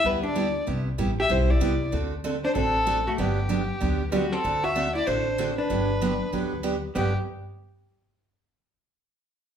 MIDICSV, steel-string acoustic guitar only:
0, 0, Header, 1, 2, 480
1, 0, Start_track
1, 0, Key_signature, 1, "major"
1, 0, Tempo, 314136
1, 1028, Time_signature, 4, 2, 24, 8
1, 14612, End_track
2, 0, Start_track
2, 0, Title_t, "Steel-string acoustic guitar"
2, 0, Program_c, 0, 25
2, 64, Note_on_c, 0, 55, 55
2, 71, Note_on_c, 0, 59, 64
2, 76, Note_on_c, 0, 64, 56
2, 80, Note_on_c, 0, 67, 67
2, 379, Note_off_c, 0, 55, 0
2, 383, Note_off_c, 0, 59, 0
2, 385, Note_off_c, 0, 64, 0
2, 387, Note_off_c, 0, 67, 0
2, 542, Note_on_c, 0, 55, 73
2, 545, Note_on_c, 0, 59, 76
2, 551, Note_on_c, 0, 64, 84
2, 555, Note_on_c, 0, 67, 74
2, 716, Note_off_c, 0, 55, 0
2, 717, Note_off_c, 0, 59, 0
2, 720, Note_off_c, 0, 64, 0
2, 722, Note_off_c, 0, 67, 0
2, 1018, Note_on_c, 0, 48, 62
2, 1026, Note_on_c, 0, 55, 57
2, 1029, Note_on_c, 0, 59, 59
2, 1031, Note_on_c, 0, 64, 56
2, 1031, Note_on_c, 0, 67, 58
2, 1335, Note_off_c, 0, 48, 0
2, 1339, Note_off_c, 0, 55, 0
2, 1341, Note_off_c, 0, 59, 0
2, 1342, Note_off_c, 0, 64, 0
2, 1342, Note_off_c, 0, 67, 0
2, 1500, Note_on_c, 0, 48, 71
2, 1504, Note_on_c, 0, 55, 68
2, 1507, Note_on_c, 0, 64, 83
2, 1508, Note_on_c, 0, 59, 73
2, 1510, Note_on_c, 0, 67, 77
2, 1674, Note_off_c, 0, 48, 0
2, 1676, Note_off_c, 0, 55, 0
2, 1678, Note_off_c, 0, 59, 0
2, 1678, Note_off_c, 0, 64, 0
2, 1679, Note_off_c, 0, 67, 0
2, 1971, Note_on_c, 0, 48, 62
2, 1978, Note_on_c, 0, 59, 58
2, 1978, Note_on_c, 0, 64, 71
2, 1980, Note_on_c, 0, 55, 59
2, 1984, Note_on_c, 0, 67, 64
2, 2291, Note_off_c, 0, 48, 0
2, 2295, Note_off_c, 0, 59, 0
2, 2295, Note_off_c, 0, 64, 0
2, 2296, Note_off_c, 0, 55, 0
2, 2298, Note_off_c, 0, 67, 0
2, 2453, Note_on_c, 0, 48, 73
2, 2460, Note_on_c, 0, 55, 74
2, 2461, Note_on_c, 0, 64, 82
2, 2462, Note_on_c, 0, 59, 80
2, 2465, Note_on_c, 0, 67, 73
2, 2630, Note_off_c, 0, 48, 0
2, 2634, Note_off_c, 0, 55, 0
2, 2634, Note_off_c, 0, 64, 0
2, 2635, Note_off_c, 0, 59, 0
2, 2636, Note_off_c, 0, 67, 0
2, 2935, Note_on_c, 0, 50, 55
2, 2938, Note_on_c, 0, 57, 50
2, 2942, Note_on_c, 0, 60, 59
2, 2943, Note_on_c, 0, 66, 59
2, 2945, Note_on_c, 0, 69, 67
2, 3253, Note_off_c, 0, 50, 0
2, 3254, Note_off_c, 0, 57, 0
2, 3256, Note_off_c, 0, 60, 0
2, 3257, Note_off_c, 0, 66, 0
2, 3258, Note_off_c, 0, 69, 0
2, 3423, Note_on_c, 0, 50, 80
2, 3425, Note_on_c, 0, 57, 77
2, 3431, Note_on_c, 0, 60, 78
2, 3433, Note_on_c, 0, 66, 72
2, 3436, Note_on_c, 0, 69, 92
2, 3595, Note_off_c, 0, 50, 0
2, 3596, Note_off_c, 0, 57, 0
2, 3599, Note_off_c, 0, 60, 0
2, 3600, Note_off_c, 0, 66, 0
2, 3601, Note_off_c, 0, 69, 0
2, 3895, Note_on_c, 0, 50, 59
2, 3898, Note_on_c, 0, 57, 59
2, 3898, Note_on_c, 0, 60, 54
2, 3906, Note_on_c, 0, 66, 62
2, 3912, Note_on_c, 0, 69, 57
2, 4212, Note_off_c, 0, 50, 0
2, 4214, Note_off_c, 0, 57, 0
2, 4214, Note_off_c, 0, 60, 0
2, 4218, Note_off_c, 0, 66, 0
2, 4221, Note_off_c, 0, 69, 0
2, 4376, Note_on_c, 0, 50, 73
2, 4380, Note_on_c, 0, 57, 75
2, 4380, Note_on_c, 0, 60, 79
2, 4383, Note_on_c, 0, 66, 82
2, 4384, Note_on_c, 0, 69, 84
2, 4551, Note_off_c, 0, 50, 0
2, 4553, Note_off_c, 0, 57, 0
2, 4553, Note_off_c, 0, 60, 0
2, 4554, Note_off_c, 0, 66, 0
2, 4555, Note_off_c, 0, 69, 0
2, 4863, Note_on_c, 0, 54, 63
2, 4864, Note_on_c, 0, 50, 55
2, 4864, Note_on_c, 0, 59, 60
2, 4871, Note_on_c, 0, 62, 61
2, 4875, Note_on_c, 0, 67, 67
2, 5176, Note_off_c, 0, 54, 0
2, 5177, Note_off_c, 0, 50, 0
2, 5177, Note_off_c, 0, 59, 0
2, 5180, Note_off_c, 0, 62, 0
2, 5182, Note_off_c, 0, 67, 0
2, 5334, Note_on_c, 0, 54, 79
2, 5335, Note_on_c, 0, 50, 70
2, 5344, Note_on_c, 0, 59, 70
2, 5344, Note_on_c, 0, 62, 72
2, 5350, Note_on_c, 0, 67, 75
2, 5510, Note_off_c, 0, 50, 0
2, 5510, Note_off_c, 0, 54, 0
2, 5515, Note_off_c, 0, 59, 0
2, 5515, Note_off_c, 0, 62, 0
2, 5518, Note_off_c, 0, 67, 0
2, 5814, Note_on_c, 0, 50, 60
2, 5822, Note_on_c, 0, 54, 53
2, 5825, Note_on_c, 0, 62, 62
2, 5826, Note_on_c, 0, 59, 61
2, 5828, Note_on_c, 0, 67, 63
2, 6132, Note_off_c, 0, 50, 0
2, 6136, Note_off_c, 0, 54, 0
2, 6137, Note_off_c, 0, 59, 0
2, 6137, Note_off_c, 0, 62, 0
2, 6139, Note_off_c, 0, 67, 0
2, 6294, Note_on_c, 0, 50, 79
2, 6297, Note_on_c, 0, 54, 74
2, 6302, Note_on_c, 0, 59, 81
2, 6305, Note_on_c, 0, 62, 76
2, 6310, Note_on_c, 0, 67, 87
2, 6470, Note_off_c, 0, 50, 0
2, 6471, Note_off_c, 0, 54, 0
2, 6474, Note_off_c, 0, 59, 0
2, 6475, Note_off_c, 0, 62, 0
2, 6478, Note_off_c, 0, 67, 0
2, 6785, Note_on_c, 0, 50, 58
2, 6793, Note_on_c, 0, 57, 59
2, 6794, Note_on_c, 0, 60, 58
2, 6797, Note_on_c, 0, 66, 60
2, 6799, Note_on_c, 0, 69, 55
2, 7097, Note_off_c, 0, 50, 0
2, 7101, Note_off_c, 0, 57, 0
2, 7102, Note_off_c, 0, 60, 0
2, 7103, Note_off_c, 0, 66, 0
2, 7104, Note_off_c, 0, 69, 0
2, 7264, Note_on_c, 0, 50, 75
2, 7267, Note_on_c, 0, 57, 75
2, 7272, Note_on_c, 0, 60, 74
2, 7273, Note_on_c, 0, 66, 86
2, 7275, Note_on_c, 0, 69, 75
2, 7435, Note_off_c, 0, 50, 0
2, 7436, Note_off_c, 0, 57, 0
2, 7439, Note_off_c, 0, 60, 0
2, 7439, Note_off_c, 0, 66, 0
2, 7440, Note_off_c, 0, 69, 0
2, 7746, Note_on_c, 0, 50, 62
2, 7750, Note_on_c, 0, 57, 65
2, 7754, Note_on_c, 0, 60, 58
2, 7756, Note_on_c, 0, 69, 53
2, 7759, Note_on_c, 0, 66, 65
2, 8058, Note_off_c, 0, 50, 0
2, 8060, Note_off_c, 0, 57, 0
2, 8062, Note_off_c, 0, 60, 0
2, 8062, Note_off_c, 0, 69, 0
2, 8064, Note_off_c, 0, 66, 0
2, 8224, Note_on_c, 0, 50, 79
2, 8228, Note_on_c, 0, 57, 79
2, 8232, Note_on_c, 0, 60, 84
2, 8232, Note_on_c, 0, 69, 76
2, 8234, Note_on_c, 0, 66, 87
2, 8395, Note_off_c, 0, 50, 0
2, 8397, Note_off_c, 0, 57, 0
2, 8399, Note_off_c, 0, 60, 0
2, 8399, Note_off_c, 0, 69, 0
2, 8400, Note_off_c, 0, 66, 0
2, 8706, Note_on_c, 0, 50, 64
2, 8709, Note_on_c, 0, 54, 64
2, 8714, Note_on_c, 0, 59, 58
2, 8716, Note_on_c, 0, 62, 63
2, 8723, Note_on_c, 0, 67, 65
2, 9018, Note_off_c, 0, 50, 0
2, 9020, Note_off_c, 0, 54, 0
2, 9022, Note_off_c, 0, 59, 0
2, 9023, Note_off_c, 0, 62, 0
2, 9026, Note_off_c, 0, 67, 0
2, 9191, Note_on_c, 0, 50, 77
2, 9193, Note_on_c, 0, 54, 72
2, 9196, Note_on_c, 0, 59, 79
2, 9199, Note_on_c, 0, 62, 74
2, 9205, Note_on_c, 0, 67, 77
2, 9358, Note_off_c, 0, 50, 0
2, 9360, Note_off_c, 0, 54, 0
2, 9361, Note_off_c, 0, 59, 0
2, 9362, Note_off_c, 0, 62, 0
2, 9366, Note_off_c, 0, 67, 0
2, 9664, Note_on_c, 0, 50, 52
2, 9670, Note_on_c, 0, 54, 59
2, 9677, Note_on_c, 0, 59, 53
2, 9679, Note_on_c, 0, 62, 63
2, 9680, Note_on_c, 0, 67, 56
2, 9977, Note_off_c, 0, 50, 0
2, 9980, Note_off_c, 0, 54, 0
2, 9984, Note_off_c, 0, 59, 0
2, 9985, Note_off_c, 0, 62, 0
2, 9985, Note_off_c, 0, 67, 0
2, 10134, Note_on_c, 0, 50, 76
2, 10134, Note_on_c, 0, 54, 74
2, 10137, Note_on_c, 0, 59, 70
2, 10141, Note_on_c, 0, 62, 73
2, 10145, Note_on_c, 0, 67, 81
2, 10310, Note_off_c, 0, 50, 0
2, 10310, Note_off_c, 0, 54, 0
2, 10312, Note_off_c, 0, 59, 0
2, 10314, Note_off_c, 0, 62, 0
2, 10316, Note_off_c, 0, 67, 0
2, 10620, Note_on_c, 0, 43, 68
2, 10625, Note_on_c, 0, 50, 68
2, 10632, Note_on_c, 0, 54, 77
2, 10635, Note_on_c, 0, 59, 68
2, 10639, Note_on_c, 0, 62, 70
2, 10641, Note_on_c, 0, 67, 82
2, 10861, Note_off_c, 0, 43, 0
2, 10864, Note_off_c, 0, 50, 0
2, 10867, Note_off_c, 0, 54, 0
2, 10869, Note_off_c, 0, 59, 0
2, 10871, Note_off_c, 0, 62, 0
2, 10872, Note_off_c, 0, 67, 0
2, 14612, End_track
0, 0, End_of_file